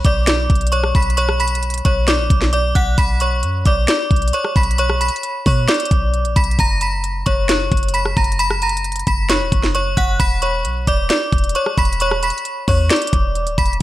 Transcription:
0.05 808-style bass B1, synth bell D5 D6, kick, closed hi-hat
0.27 synth bell D5 D6, snare, closed hi-hat
0.50 808-style bass B1, kick, closed hi-hat
0.55 closed hi-hat
0.61 closed hi-hat
0.67 closed hi-hat
0.72 synth bell C#5 C#6, closed hi-hat
0.84 cross-stick
0.95 808-style bass B1, synth bell B5 B6, kick, closed hi-hat
1.02 closed hi-hat
1.10 closed hi-hat
1.17 synth bell C#5 C#6, closed hi-hat
1.29 cross-stick
1.40 synth bell B5 B6, closed hi-hat
1.48 closed hi-hat
1.55 closed hi-hat
1.63 closed hi-hat
1.70 closed hi-hat
1.74 closed hi-hat
1.78 closed hi-hat
1.85 808-style bass B1, synth bell C#5 C#6, kick, closed hi-hat
2.08 synth bell D5 D6, snare, closed hi-hat
2.19 808-style bass A#1
2.30 808-style bass B1, kick, closed hi-hat
2.42 snare
2.53 synth bell D5 D6, closed hi-hat
2.75 808-style bass B1, synth bell F#5 F#6, kick, closed hi-hat
2.98 808-style bass B1, synth bell B5 B6, kick, closed hi-hat
3.20 synth bell C#5 C#6, closed hi-hat
3.43 808-style bass F#2, closed hi-hat
3.65 808-style bass B1, synth bell D5 D6, kick, closed hi-hat
3.88 synth bell D5 D6, snare, closed hi-hat
4.11 808-style bass B1, kick, closed hi-hat
4.16 closed hi-hat
4.22 closed hi-hat
4.28 closed hi-hat
4.33 synth bell C#5 C#6, closed hi-hat
4.45 cross-stick
4.56 808-style bass B1, synth bell B5 B6, kick, closed hi-hat
4.63 closed hi-hat
4.71 closed hi-hat
4.78 synth bell C#5 C#6, closed hi-hat
4.90 cross-stick
5.01 synth bell B5 B6, closed hi-hat
5.08 closed hi-hat
5.16 closed hi-hat
5.23 closed hi-hat
5.46 808-style bass B2, synth bell C#5 C#6, kick, open hi-hat
5.68 synth bell D5 D6, snare, closed hi-hat
5.74 closed hi-hat
5.80 closed hi-hat
5.85 closed hi-hat
5.91 808-style bass B1, kick, closed hi-hat
6.14 closed hi-hat
6.25 808-style bass A#1, closed hi-hat
6.36 808-style bass B1, synth bell B5 B6, kick, closed hi-hat
6.44 closed hi-hat
6.51 closed hi-hat
6.59 808-style bass F#1, synth bell A#5 A#6, kick, closed hi-hat
6.81 synth bell B5 B6, closed hi-hat
7.04 closed hi-hat
7.26 808-style bass F#1, synth bell C#5 C#6, kick, closed hi-hat
7.49 synth bell C#5 C#6, snare, closed hi-hat
7.72 808-style bass F#1, kick, closed hi-hat
7.77 closed hi-hat
7.83 closed hi-hat
7.88 closed hi-hat
7.94 synth bell B5 B6, closed hi-hat
8.05 cross-stick
8.17 808-style bass F#1, synth bell A#5 A#6, kick, closed hi-hat
8.24 closed hi-hat
8.32 closed hi-hat
8.39 synth bell B5 B6, closed hi-hat
8.51 cross-stick
8.62 synth bell A#5 A#6, closed hi-hat
8.69 closed hi-hat
8.77 closed hi-hat
8.84 closed hi-hat
8.92 closed hi-hat
8.96 closed hi-hat
8.99 closed hi-hat
9.07 808-style bass F#1, synth bell B5 B6, kick, closed hi-hat
9.30 synth bell C#5 C#6, snare, closed hi-hat
9.41 808-style bass E1
9.52 808-style bass F#1, kick, closed hi-hat
9.63 snare
9.75 synth bell C#5 C#6, closed hi-hat
9.97 808-style bass F#1, synth bell F#5 F#6, kick, closed hi-hat
10.20 808-style bass E1, synth bell B5 B6, kick, closed hi-hat
10.42 synth bell C#5 C#6, closed hi-hat
10.65 808-style bass B1, closed hi-hat
10.87 808-style bass E1, synth bell D5 D6, kick, closed hi-hat
11.10 synth bell D5 D6, snare, closed hi-hat
11.32 808-style bass E1, kick, closed hi-hat
11.38 closed hi-hat
11.44 closed hi-hat
11.49 closed hi-hat
11.55 synth bell C#5 C#6, closed hi-hat
11.66 cross-stick
11.78 808-style bass E1, synth bell B5 B6, kick, closed hi-hat
11.85 closed hi-hat
11.93 closed hi-hat
12.00 synth bell C#5 C#6, closed hi-hat
12.11 cross-stick
12.23 synth bell B5 B6, closed hi-hat
12.30 closed hi-hat
12.38 closed hi-hat
12.45 closed hi-hat
12.68 808-style bass E2, synth bell C#5 C#6, kick, open hi-hat
12.90 synth bell D5 D6, snare, closed hi-hat
12.96 closed hi-hat
13.02 closed hi-hat
13.07 closed hi-hat
13.13 808-style bass E1, kick, closed hi-hat
13.35 closed hi-hat
13.47 808-style bass D1, closed hi-hat
13.58 808-style bass E1, synth bell B5 B6, kick, closed hi-hat
13.66 closed hi-hat
13.73 closed hi-hat

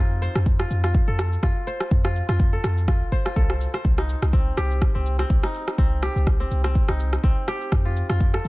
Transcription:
Already playing: 808-style bass F2, kora C4 D#4 F4 G4
0.22 kora C5, shaker
0.35 808-style bass F2, cross-stick, shaker
0.46 kick, shaker
0.59 kora F4, cross-stick
0.71 808-style bass F2, shaker
0.84 kora F4, cross-stick, shaker
0.94 kick, shaker
1.08 808-style bass F2, kora A4
1.19 cross-stick, shaker
1.32 shaker
1.43 808-style bass F2, kora F4, kick, cross-stick, shaker
1.67 kora C5, shaker
1.80 cross-stick, shaker
1.91 808-style bass F2, kick, shaker
2.04 kora F4, cross-stick
2.16 shaker
2.29 808-style bass F2, kora F4, cross-stick, shaker
2.40 kick, shaker
2.53 kora A4
2.64 808-style bass F2, cross-stick, shaker
2.77 shaker
2.88 kora F4, kick, cross-stick, shaker
3.01 808-style bass F1
3.12 kora C5, kick, shaker
3.25 kora F4, cross-stick, shaker
3.36 808-style bass C2, kora A4, kick, shaker
3.49 kora C5, cross-stick
3.61 shaker
3.74 kora C5, cross-stick, shaker
3.85 808-style bass C2, kick, shaker
3.98 kora D#4, cross-stick
4.09 shaker
4.22 808-style bass C2, cross-stick, shaker
4.33 kora C4, kick, shaker
4.57 808-style bass C2, kora G4, cross-stick, shaker
4.71 shaker
4.82 kick, cross-stick, shaker
4.95 808-style bass C2, kora C4
5.06 shaker
5.19 kora C4, cross-stick, shaker
5.30 808-style bass C2, kick, shaker
5.43 kora D#4, cross-stick
5.54 shaker
5.68 cross-stick, shaker
5.78 808-style bass C2, kora C4, kick, shaker
6.03 kora G4, cross-stick, shaker
6.16 808-style bass C2, shaker
6.27 kick, cross-stick, shaker
6.40 kora C4
6.51 808-style bass C2, shaker
6.64 kora C4, cross-stick, shaker
6.75 kick, shaker
6.88 808-style bass C2, kora D#4, cross-stick
7.00 shaker
7.13 cross-stick, shaker
7.24 808-style bass C2, kora C4, kick, shaker
7.48 kora G4, cross-stick, shaker
7.61 shaker
7.72 808-style bass F2, kick, cross-stick, shaker
7.85 kora F4
7.96 shaker
8.10 808-style bass F2, kora F4, cross-stick, shaker
8.20 kick, shaker
8.34 kora A4, cross-stick
8.45 808-style bass F2, shaker

